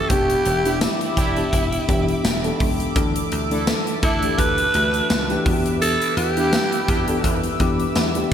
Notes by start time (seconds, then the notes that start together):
Already playing: E3 A3 C#4 E4 G4 A4 E5
0.09 E1 E3 B3 D4 G4 B5 D6, kick, closed hi-hat
0.30 closed hi-hat
0.45 E1, closed hi-hat
0.65 E3 B3 D4 E4 G4, closed hi-hat
0.81 E4, snare, closed hi-hat, tambourine
1.01 closed hi-hat
1.17 E1 D4 E4 G4, kick, closed hi-hat
1.37 E3 B3 D4 G4, closed hi-hat
1.53 E1, kick, closed hi-hat
1.73 closed hi-hat
1.88 E1 E3 B3 D4 G4, kick, closed hi-hat
2.08 closed hi-hat
2.24 E1, snare, closed hi-hat, tambourine
2.44 E3 B3 D4 A4, closed hi-hat
2.60 C#2, kick, open hi-hat
2.80 closed hi-hat
2.95 D2 E3 A3 D4 A4 E6, kick, closed hi-hat
3.16 closed hi-hat
3.32 D2, closed hi-hat
3.50 E3 A3 D4 E4 A4, closed hi-hat
3.67 snare, closed hi-hat, tambourine
3.87 closed hi-hat
4.03 D2 D4 E4 A4, kick, closed hi-hat
4.23 E3 A3 D4 G4, closed hi-hat
4.38 D2 B4, kick, closed hi-hat
4.58 closed hi-hat
4.74 D2 E3 A3 D4 F#4, closed hi-hat
4.94 closed hi-hat
5.10 C#2, snare, closed hi-hat, tambourine
5.30 E3 A3 D4 G4, closed hi-hat
5.45 E2 E3 B3 D4 F#4 B4 E5 D6, kick, open hi-hat
5.53 G4
5.66 closed hi-hat
5.82 A4, closed hi-hat
6.02 closed hi-hat
6.17 E2 G4, closed hi-hat
6.37 E3 B3 D4 E4 G4, closed hi-hat
6.53 snare, closed hi-hat, tambourine
6.72 closed hi-hat
6.88 E2 D4 E4 G4, kick, closed hi-hat
7.08 E3 B3 D4 A4, closed hi-hat
7.24 E2, kick, closed hi-hat
7.43 closed hi-hat
7.59 E2 E3 B3 D4 G4, kick, closed hi-hat
7.80 closed hi-hat
7.95 E2, snare, closed hi-hat, tambourine
8.15 E3 B3 D4 G4, closed hi-hat